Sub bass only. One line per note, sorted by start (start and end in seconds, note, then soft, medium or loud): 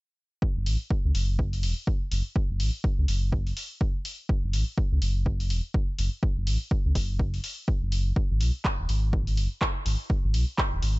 0.56 0.68 F#1 medium
0.66 0.77 A1 medium
1.05 1.12 C#2 medium
1.15 1.65 F#1 medium
1.63 1.74 E1 medium
2.12 2.22 F#1 medium
2.50 2.61 F#1 medium
2.60 2.70 A1 medium
2.98 3.06 C#2 medium
3.08 3.52 F#1 medium
4.43 4.55 F#1 medium
4.53 4.64 A1 medium
4.92 4.99 C#2 medium
5.02 5.52 F#1 medium
5.50 5.61 E1 medium
5.99 6.09 F#1 medium
6.37 6.48 F#1 medium
6.47 6.57 A1 medium
6.85 6.93 C#2 medium
6.95 7.39 F#1 medium
7.82 8.12 F#1 loud
8.30 8.42 G#1 medium
8.41 8.51 B1 medium
8.79 8.86 D#1 medium
8.89 9.39 G#1 medium
9.37 9.48 F#1 medium
9.86 9.96 G#1 medium
10.24 10.36 G#1 medium
10.34 10.44 B1 medium
10.72 10.80 D#1 medium
10.82 10.99 G#1 medium